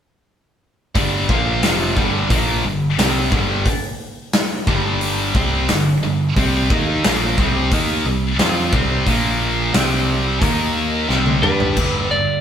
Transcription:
0.95 1.27 G1 medium
0.95 1.28 G2 medium
0.95 1.29 D3 medium
0.95 1.29 G3 loud
0.95 kick loud
0.95 open hi-hat medium
1.29 1.61 A#1 loud
1.29 1.63 A#2 loud
1.29 1.63 F3 loud
1.29 1.63 A#3 loud
1.29 kick loud
1.63 1.95 F1 loud
1.63 1.96 F2 medium
1.63 1.97 C3 loud
1.63 1.97 F3 loud
1.63 snare loud
1.63 open hi-hat medium
1.97 2.28 G1 medium
1.97 2.30 G2 medium
1.97 2.30 D3 medium
1.97 2.30 G3 medium
1.97 kick loud
2.30 2.62 A#1 loud
2.30 2.63 A#2 medium
2.30 2.64 F3 medium
2.30 2.64 A#3 loud
2.30 kick loud
2.30 open hi-hat medium
2.64 2.96 G1 medium
2.64 2.92 G2 medium
2.64 2.92 D3 medium
2.98 3.30 C2 medium
2.98 3.31 C3 loud
2.98 3.31 G3 loud
2.98 3.32 C4 loud
2.98 snare loud
2.98 open hi-hat medium
3.31 3.63 G1 loud
3.31 3.65 G2 loud
3.31 3.66 D3 loud
3.31 3.66 G3 loud
3.31 kick loud
3.66 kick loud
3.66 open hi-hat medium
4.33 snare loud
4.33 open hi-hat medium
4.67 5.31 G1 medium
4.67 5.34 G2 loud
4.67 5.34 D3 medium
4.67 5.35 G3 loud
4.67 kick loud
5.01 open hi-hat medium
5.35 5.66 C2 medium
5.35 5.68 C3 medium
5.35 5.68 G3 medium
5.35 5.69 C4 loud
5.35 kick loud
5.68 6.01 G1 medium
5.68 5.97 G2 medium
5.68 5.97 D3 medium
5.68 snare loud
5.68 open hi-hat medium
6.03 6.34 G1 medium
6.03 6.30 G2 medium
6.03 6.30 D3 medium
6.36 6.68 C2 medium
6.36 6.70 C3 medium
6.36 6.70 G3 medium
6.36 6.70 C4 medium
6.36 kick loud
6.36 open hi-hat medium
6.70 7.02 D#2 medium
6.70 7.04 D#3 loud
6.70 7.04 A#3 loud
6.70 7.04 D#4 loud
6.70 kick loud
7.04 7.36 A#1 medium
7.04 7.37 A#2 medium
7.04 7.38 F3 medium
7.04 7.38 A#3 loud
7.04 snare loud
7.04 open hi-hat medium
7.38 7.69 C2 medium
7.38 7.71 C3 loud
7.38 7.71 G3 loud
7.38 7.72 C4 loud
7.38 kick loud
7.71 8.03 D#2 loud
7.71 8.05 D#3 loud
7.71 8.05 A#3 loud
7.71 8.05 D#4 loud
7.71 kick loud
7.71 open hi-hat medium
8.05 8.37 C2 medium
8.05 8.33 C3 medium
8.05 8.33 G3 medium
8.39 8.71 F2 medium
8.39 8.72 F3 medium
8.39 8.72 C4 loud
8.39 8.73 F4 loud
8.39 snare loud
8.39 open hi-hat medium
8.73 9.04 C2 loud
8.73 9.06 C3 loud
8.73 9.06 G3 loud
8.73 9.07 C4 loud
8.73 kick loud
9.06 9.70 A#1 medium
9.06 9.73 A#2 medium
9.06 9.74 F3 loud
9.06 9.74 A#3 medium
9.06 kick loud
9.06 open hi-hat medium
9.74 10.38 C2 medium
9.74 10.42 C3 medium
9.74 10.42 G3 medium
9.74 10.42 C4 loud
9.74 snare loud
9.74 open hi-hat medium
10.42 11.05 D#2 medium
10.42 11.08 D#3 loud
10.42 11.09 A#3 loud
10.42 11.09 D#4 loud
10.42 kick loud
10.42 open hi-hat medium
11.08 11.41 C2 medium
11.08 11.42 C3 medium
11.08 11.42 G3 loud
11.08 11.42 C4 loud
11.08 snare medium
11.26 high tom medium
11.43 11.75 G2 loud
11.43 11.76 G3 loud
11.43 11.76 D4 loud
11.43 11.77 G4 loud
11.43 12.07 B4 medium
11.43 mid tom loud
11.60 floor tom medium
11.77 12.27 G1 medium
11.77 12.09 G2 medium
11.77 12.09 D3 medium
11.77 12.09 G3 medium
11.77 kick loud
11.77 crash loud
12.11 12.41 G2 medium
12.11 12.41 D3 medium
12.11 12.41 D5 medium

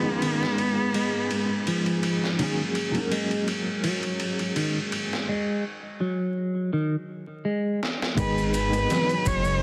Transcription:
0.00 0.02 D#3 medium
0.00 2.34 D#3 medium
0.00 0.19 F3 medium
0.00 0.06 G#3 medium
0.00 5.28 G#3 medium
0.00 2.00 B3 medium
0.00 0.09 C#4 medium
0.00 0.12 F4 medium
0.00 5.28 G#4 medium
0.06 2.35 G#3 medium
0.06 2.37 C#4 medium
0.12 2.39 F4 medium
0.22 0.44 D#3 medium
0.22 ride medium
0.43 snare medium
0.58 ride medium
0.94 1.29 G#3 medium
0.94 ride medium
1.31 ride medium
1.67 2.36 F3 medium
1.67 ride medium
1.86 ride soft
2.03 ride medium
2.24 snare soft
2.39 2.61 D#3 medium
2.39 2.90 F#3 medium
2.39 2.91 A#3 medium
2.39 2.91 C#4 medium
2.39 ride medium
2.43 2.92 G#4 medium
2.75 ride medium
2.91 5.23 F#3 medium
2.91 5.24 A#3 medium
2.91 ride soft
2.97 5.26 C#4 medium
2.97 5.27 A#4 medium
3.11 3.46 G#3 medium
3.11 ride medium
3.31 ride soft
3.48 ride medium
3.84 4.53 F#3 medium
3.84 ride medium
4.03 ride soft
4.20 ride medium
4.39 ride soft
4.56 4.78 D#3 medium
4.56 ride medium
4.92 ride medium
5.13 snare soft
5.29 5.63 G#3 medium
6.01 6.70 F#3 medium
6.73 6.95 D#3 medium
7.45 7.80 G#3 medium
7.83 snare medium
8.02 snare medium
8.16 8.87 G#1 loud
8.16 8.68 D#3 medium
8.16 8.52 G#3 medium
8.16 9.63 G#3 medium
8.16 8.69 G#3 medium
8.16 8.69 B3 medium
8.16 8.52 B4 medium
8.16 9.63 G#5 medium
8.16 kick loud
8.16 ride medium
8.16 maracas soft
8.21 8.70 G#4 medium
8.38 maracas soft
8.54 9.29 B4 medium
8.54 ride medium
8.54 maracas medium
8.69 9.63 D#3 medium
8.69 9.63 G#3 medium
8.73 9.63 B3 medium
8.73 ride soft
8.73 maracas soft
8.78 9.63 B4 medium
8.90 9.59 F#3 medium
8.90 snare loud
8.90 ride medium
8.90 maracas soft
9.09 ride soft
9.09 maracas soft
9.26 9.63 F#1 medium
9.26 9.63 C#5 loud
9.26 kick medium
9.26 ride medium
9.26 maracas medium
9.45 maracas soft

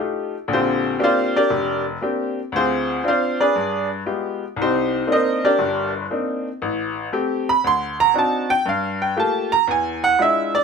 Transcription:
0.00 0.34 A3 soft
0.00 0.34 D#4 soft
0.00 0.34 F4 soft
0.00 0.34 G4 soft
0.48 0.93 A#1 medium
0.48 0.93 D3 medium
0.53 0.98 C4 medium
0.53 0.99 F4 medium
0.53 0.98 G4 medium
0.53 0.99 C5 medium
0.99 1.36 A#3 medium
0.99 1.36 C4 soft
0.99 1.36 D4 medium
0.99 1.36 G4 medium
1.04 1.36 F4 medium
1.04 1.36 C5 medium
1.04 1.35 D5 medium
1.04 1.35 F5 medium
1.36 1.83 D4 medium
1.36 1.84 G4 medium
1.36 1.83 A#4 medium
1.36 1.83 D5 medium
1.50 1.95 F1 medium
2.01 2.38 A#3 soft
2.01 2.38 C4 soft
2.01 2.39 D4 soft
2.01 2.39 G4 medium
2.52 2.97 D2 medium
2.52 3.02 C5 medium
2.56 3.02 C4 medium
2.56 3.02 F4 medium
2.56 3.02 G#4 medium
3.04 3.40 C4 medium
3.04 3.39 D4 medium
3.04 3.07 F4 medium
3.08 3.40 F4 medium
3.08 3.40 C5 medium
3.08 3.39 D5 medium
3.08 3.40 F5 medium
3.40 3.88 D4 medium
3.40 3.88 G#4 medium
3.40 3.87 B4 medium
3.40 3.87 D5 medium
3.56 4.00 G2 medium
4.06 4.42 G#3 soft
4.06 4.43 B3 soft
4.06 4.43 F4 soft
4.06 4.43 G4 medium
4.56 5.01 C2 medium
4.62 5.06 C4 medium
4.62 5.06 D#4 medium
4.62 5.07 G4 medium
4.62 5.07 C5 medium
5.07 5.44 A#3 medium
5.07 5.44 C4 soft
5.07 5.44 D4 soft
5.07 5.12 D#4 medium
5.12 5.44 D#4 medium
5.12 5.43 A#4 medium
5.12 5.44 C5 medium
5.12 5.44 D#5 medium
5.45 5.92 D4 medium
5.45 5.91 G4 medium
5.45 5.91 A#4 medium
5.45 5.91 D5 medium
5.59 6.04 G1 medium
5.59 6.04 G2 medium
6.11 6.47 A#3 soft
6.11 6.47 C4 soft
6.11 6.47 D4 soft
6.11 6.47 D#4 soft
6.62 7.06 A1 medium
7.13 7.49 A3 medium
7.13 7.49 C4 medium
7.13 7.49 G4 medium
7.49 7.64 B5 loud
7.64 8.08 D2 medium
7.64 7.99 C6 loud
8.00 8.15 A#5 loud
8.14 8.51 C4 soft
8.14 8.51 D4 soft
8.14 8.51 D#4 soft
8.14 8.51 F#4 medium
8.19 8.50 A5 medium
8.50 8.66 G5 loud
8.66 9.10 G2 medium
8.66 9.01 F5 medium
9.02 9.17 G5 medium
9.16 9.53 A3 medium
9.16 9.53 A#3 medium
9.16 9.53 F4 medium
9.16 9.53 G4 medium
9.16 9.52 A5 medium
9.52 9.68 A#5 loud
9.68 10.12 E2 medium
9.68 10.03 G#5 medium
10.04 10.19 F#5 loud
10.19 10.55 G#3 medium
10.19 10.55 D4 soft
10.19 10.55 E4 soft
10.19 10.55 F4 medium
10.19 10.54 E5 medium
10.55 10.64 D5 loud

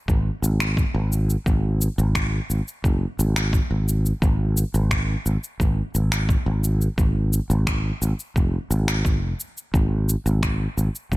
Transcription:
0.08 0.29 G#1 medium
0.08 kick loud
0.08 shaker soft
0.42 0.83 G#1 medium
0.42 shaker medium
0.60 finger snap medium
0.60 shaker soft
0.77 kick loud
0.77 shaker soft
0.94 1.35 G#1 medium
1.13 shaker medium
1.30 shaker soft
1.46 1.87 G#1 medium
1.46 kick loud
1.46 shaker soft
1.81 shaker medium
1.98 2.39 G#1 medium
1.98 shaker soft
2.15 finger snap medium
2.15 kick loud
2.15 shaker soft
2.50 2.60 G#1 medium
2.50 shaker medium
2.68 shaker soft
2.84 3.05 F#1 medium
2.84 kick loud
2.84 shaker soft
3.19 3.60 G#1 medium
3.19 shaker medium
3.36 finger snap medium
3.36 shaker soft
3.53 kick loud
3.53 shaker soft
3.71 4.11 G#1 medium
3.89 shaker medium
4.06 shaker soft
4.22 4.63 G#1 loud
4.22 kick loud
4.22 shaker soft
4.57 shaker medium
4.74 5.15 G#1 medium
4.74 shaker soft
4.91 finger snap medium
4.91 kick loud
4.91 shaker soft
5.26 5.36 G#1 medium
5.26 shaker medium
5.44 shaker soft
5.60 5.81 G#1 medium
5.60 kick loud
5.60 shaker soft
5.95 6.35 G#1 medium
5.95 shaker medium
6.12 finger snap medium
6.12 shaker soft
6.29 kick loud
6.29 shaker soft
6.46 6.87 G#1 medium
6.64 shaker medium
6.81 shaker soft
6.98 7.39 G#1 medium
6.98 kick loud
6.98 shaker soft
7.33 shaker medium
7.50 7.90 G#1 medium
7.50 shaker soft
7.67 finger snap medium
7.67 kick loud
7.67 shaker soft
8.02 8.12 G#1 medium
8.02 shaker medium
8.20 shaker soft
8.36 8.57 F1 medium
8.36 kick medium
8.36 shaker soft
8.71 9.22 G#1 medium
8.71 shaker medium
8.88 finger snap medium
8.88 shaker soft
9.05 kick loud
9.05 shaker soft
9.22 9.32 F1 medium
9.40 shaker medium
9.58 shaker soft
9.74 10.15 G#1 medium
9.74 kick loud
9.74 shaker soft
10.09 shaker medium
10.26 10.66 G#1 medium
10.26 shaker soft
10.43 finger snap medium
10.43 kick medium
10.43 shaker soft
10.77 10.88 G#1 medium
10.77 shaker medium
10.95 shaker soft
11.12 11.17 G#1 medium
11.12 kick medium
11.12 shaker soft

